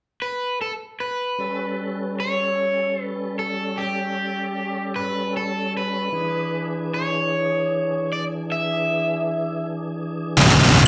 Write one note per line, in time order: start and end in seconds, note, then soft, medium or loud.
0.22 0.58 B4 medium
0.61 0.72 A4 medium
1.00 2.14 B4 medium
1.38 6.09 G3 soft
1.38 6.09 C#4 soft
1.38 6.10 A4 soft
2.20 3.03 C#5 medium
3.03 3.39 B4 medium
3.39 3.79 A4 medium
3.78 4.99 G4 medium
4.96 5.36 B4 medium
5.37 5.72 A4 medium
5.77 6.94 B4 medium
6.12 10.83 E3 medium
6.12 10.63 D4 medium
6.12 10.83 G#4 medium
6.94 8.12 C#5 medium
8.13 8.23 D5 medium
8.52 9.65 E5 medium
10.56 10.81 A3 medium
10.56 10.83 B3 medium
10.61 10.83 C4 medium
10.61 10.85 D4 medium
10.67 10.87 E4 medium
10.67 10.88 F4 medium
10.72 10.86 G4 medium
10.72 10.85 A4 medium
10.78 10.88 B4 medium
10.78 10.88 C5 medium